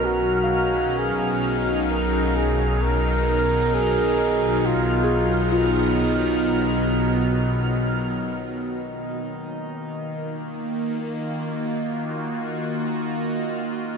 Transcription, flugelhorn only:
0.05 1.00 F#4 loud
0.98 1.64 G#4 loud
1.89 2.37 A#4 medium
2.35 2.83 G#4 medium
2.82 3.76 A#4 medium
3.74 4.68 G#4 medium
4.66 5.59 F4 medium
5.60 7.91 D#4 medium

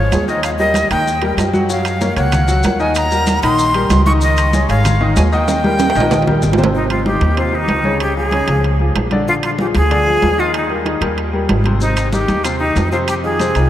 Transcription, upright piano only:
0.12 0.25 G#3 medium
0.12 0.25 G#4 medium
0.12 0.25 C#5 medium
0.28 0.54 D#3 medium
0.28 0.54 D#4 medium
0.28 0.54 D#5 medium
0.60 0.85 G3 medium
0.60 0.86 G4 medium
0.60 0.86 A#4 medium
0.91 1.16 D#3 medium
0.91 1.17 D#4 medium
0.91 1.17 D#5 medium
1.22 1.48 G3 medium
1.22 1.48 G4 medium
1.22 1.48 A#4 medium
1.53 1.66 F#3 medium
1.53 1.67 F#4 medium
1.53 1.67 F#5 medium
1.69 1.95 F#3 medium
1.69 1.96 F#4 medium
1.69 1.96 C#5 medium
2.01 2.14 A#3 medium
2.01 2.14 A#4 medium
2.01 2.14 C#5 medium
2.17 2.43 A#3 medium
2.17 2.43 A#4 medium
2.17 2.43 C#5 medium
2.48 2.61 F#3 medium
2.48 2.61 F#4 medium
2.48 2.61 F#5 loud
2.64 2.77 A#3 medium
2.64 2.77 A#4 medium
2.64 2.78 C#5 medium
2.80 3.06 D#3 medium
2.80 3.06 D#4 medium
2.80 3.06 D#5 medium
3.12 3.37 G3 medium
3.12 3.38 G4 medium
3.12 3.38 A#4 medium
3.43 3.69 D#3 loud
3.43 3.69 D#4 medium
3.43 3.69 D#5 medium
3.75 4.01 G3 medium
3.75 4.01 G4 medium
3.75 4.01 A#4 medium
4.07 4.19 D#3 medium
4.07 4.19 D#4 medium
4.07 4.20 D#5 medium
4.23 4.48 D#3 medium
4.23 4.48 D#4 medium
4.23 4.48 D#5 medium
4.54 4.67 G#3 medium
4.54 4.67 G#4 medium
4.54 4.67 C#5 medium
4.70 4.95 G#3 medium
4.70 4.95 G#4 medium
4.70 4.96 C#5 medium
5.01 5.14 D#3 medium
5.01 5.14 D#4 medium
5.01 5.14 D#5 medium
5.16 5.29 G#3 medium
5.16 5.29 G#4 medium
5.16 5.29 C#5 medium
5.32 5.58 D#3 medium
5.32 5.58 D#4 loud
5.32 5.58 D#5 loud
5.64 5.90 G3 medium
5.64 5.90 G4 medium
5.64 5.90 A#4 medium
5.96 6.21 D#3 loud
5.96 6.22 D#4 medium
5.96 6.22 D#5 loud
6.27 6.53 G3 medium
6.27 6.53 G4 medium
6.27 6.53 A#4 medium
6.58 6.71 C3 medium
6.58 6.71 C4 medium
6.58 6.71 C5 medium
6.73 7.00 C3 medium
6.73 7.00 C4 medium
6.73 7.00 C5 medium
7.05 7.31 D#3 medium
7.05 7.31 D#4 medium
7.05 7.32 G4 medium
7.37 7.50 C3 medium
7.37 7.50 C4 medium
7.37 7.51 C5 medium
7.52 7.79 D#3 medium
7.52 7.79 D#4 medium
7.52 7.79 G4 medium
7.85 8.11 C#3 medium
7.85 8.11 C#4 medium
7.85 8.11 C#5 medium
8.16 8.29 F3 medium
8.16 8.30 F4 medium
8.16 8.30 G#4 medium
8.32 8.45 C#3 medium
8.32 8.46 C#4 medium
8.32 8.46 C#5 medium
8.48 8.74 F3 medium
8.48 8.75 F4 medium
8.48 8.75 G#4 medium
8.80 9.06 F3 medium
8.80 9.06 F4 medium
8.80 9.06 G#4 medium
9.12 9.25 D3 medium
9.12 9.25 D4 medium
9.12 9.25 D5 medium
9.28 9.54 D3 medium
9.28 9.54 D4 medium
9.28 9.54 D5 medium
9.59 9.85 F3 medium
9.59 9.85 F4 medium
9.59 9.86 G#4 medium
9.91 10.04 D3 medium
9.91 10.04 D4 medium
9.91 10.04 D5 medium
10.07 10.33 F3 medium
10.07 10.33 F4 medium
10.07 10.33 G#4 medium
10.38 10.64 D#3 medium
10.38 10.64 D#4 medium
10.38 10.64 D#5 medium
10.70 10.83 G3 medium
10.70 10.83 G4 medium
10.70 10.83 A#4 medium
10.85 10.99 D#3 medium
10.85 10.99 D#4 medium
10.85 10.99 D#5 medium
11.02 11.28 G3 medium
11.02 11.28 G4 medium
11.02 11.28 A#4 medium
11.33 11.59 G3 medium
11.33 11.60 G4 medium
11.33 11.60 A#4 medium
11.66 11.79 C3 medium
11.66 11.79 C4 medium
11.66 11.79 C5 medium
11.81 12.07 C3 medium
11.81 12.07 C4 medium
11.81 12.08 C5 medium
12.13 12.39 D#3 medium
12.13 12.39 D#4 medium
12.13 12.39 G4 medium
12.45 12.58 C3 medium
12.45 12.58 C4 medium
12.45 12.58 C5 medium
12.60 12.86 D#3 medium
12.60 12.87 D#4 medium
12.60 12.87 G4 medium
12.92 13.18 C3 medium
12.92 13.18 C4 medium
12.92 13.19 C5 medium
13.24 13.37 D#3 medium
13.24 13.37 D#4 medium
13.24 13.37 F4 medium
13.40 13.53 C3 medium
13.40 13.53 C4 medium
13.40 13.53 C5 medium
13.56 13.70 D#3 medium
13.56 13.70 D#4 medium
13.56 13.70 F4 medium

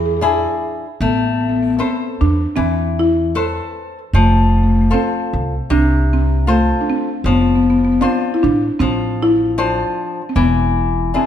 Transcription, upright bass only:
0.00 0.45 E2 medium
1.00 1.79 A1 medium
2.21 2.45 E2 medium
2.57 3.59 E2 medium
4.13 4.91 F1 medium
5.33 5.57 C2 medium
5.70 6.71 C2 medium
7.24 8.02 F1 medium
8.44 8.67 A1 medium
8.80 9.82 A1 medium
10.36 11.15 E1 medium

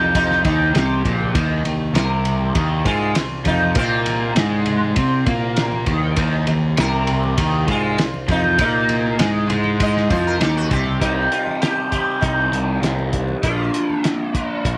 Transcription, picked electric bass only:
0.00 0.41 F2 medium
0.45 0.73 D#2 loud
0.74 1.02 C2 medium
1.05 1.33 A#1 medium
1.35 1.63 D#2 loud
1.65 1.93 D#2 medium
1.94 2.51 C2 medium
2.55 2.83 D#2 medium
2.85 3.13 G#2 loud
3.46 3.74 F2 loud
3.76 4.32 A#2 medium
4.36 4.92 G#2 loud
4.96 5.25 C3 medium
5.26 5.83 A#2 loud
5.86 6.15 D#2 medium
6.16 6.45 D#2 loud
6.48 6.76 D#2 medium
6.78 7.34 C2 loud
7.38 7.66 D#2 loud
7.68 7.96 G#2 loud
8.28 8.56 F2 loud
8.58 9.15 A#2 medium
9.19 9.47 G#2 medium
9.50 10.06 G#2 medium
10.10 10.38 F2 loud
10.40 10.68 D#2 medium
10.71 10.99 C2 loud
11.01 11.27 C2 medium
12.22 12.48 C2 medium
12.51 12.78 C2 loud
12.82 13.34 C2 medium
13.43 13.69 A#1 medium
14.65 14.78 A#1 medium

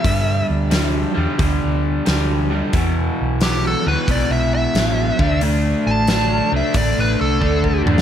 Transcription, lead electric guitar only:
0.00 0.46 E5 medium
3.43 3.63 G4 medium
3.67 3.87 A4 medium
3.88 4.08 B4 medium
4.11 4.31 D5 medium
4.32 4.53 E5 medium
4.54 5.40 E5 medium
5.87 6.51 A5 loud
6.56 6.76 E5 medium
6.77 6.97 D5 medium
7.00 7.20 B4 medium
7.21 7.85 A4 medium

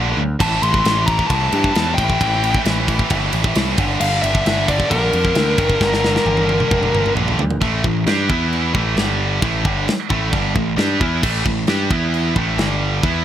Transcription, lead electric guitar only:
0.41 0.63 A5 loud
0.63 1.06 C6 loud
1.06 1.27 A#5 loud
1.27 1.98 A5 loud
1.95 2.60 G5 medium
4.01 4.22 F5 loud
4.22 4.69 E5 loud
4.69 4.92 D5 loud
4.90 7.13 A#4 loud

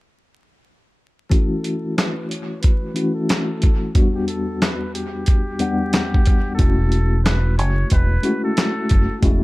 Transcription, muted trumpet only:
1.32 1.94 A4 loud
1.97 2.27 B4 medium
2.29 2.59 C#5 medium
2.62 3.12 B4 medium
3.14 3.90 A4 medium
4.15 4.27 G4 medium
4.28 4.58 A4 medium
4.63 4.92 B4 medium
4.94 6.54 G4 medium
6.55 7.19 A4 loud
7.25 7.55 B4 medium
7.58 7.88 C#5 medium
7.93 8.42 B4 medium
8.44 9.19 A4 medium

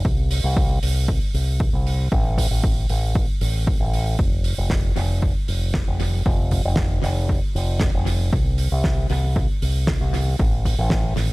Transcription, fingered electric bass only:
0.05 0.40 C2 medium
0.44 0.79 C2 medium
0.82 1.18 C2 medium
1.34 1.69 C2 medium
1.73 2.08 C2 medium
2.12 2.47 A1 medium
2.51 2.86 A1 medium
2.89 3.24 A1 medium
3.41 3.76 A1 medium
3.80 4.15 A1 medium
4.19 4.54 F1 medium
4.58 4.93 F1 medium
4.96 5.31 F1 medium
5.48 5.83 F1 medium
5.87 6.22 F1 medium
6.26 6.61 F1 medium
6.65 7.00 F1 medium
7.03 7.38 F1 medium
7.55 7.90 F1 medium
7.94 8.29 F1 medium
8.33 8.68 C2 medium
8.72 9.07 C2 medium
9.10 9.45 C2 medium
9.62 9.97 C2 medium
10.01 10.36 C2 loud
10.39 10.75 A1 medium
10.79 11.13 A1 medium
11.17 11.33 A1 medium

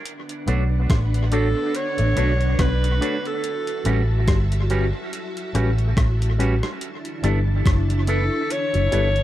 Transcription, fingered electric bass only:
0.48 0.87 B1 loud
0.90 1.53 A1 medium
1.99 2.16 A1 medium
2.18 2.56 B1 medium
2.59 2.98 B1 medium
3.86 4.25 A1 loud
4.28 4.90 G1 medium
5.55 5.94 A1 medium
5.97 6.59 A1 loud
7.24 7.62 G1 loud
7.66 8.28 F#1 medium
8.75 8.91 F#1 medium
8.93 9.23 G1 medium

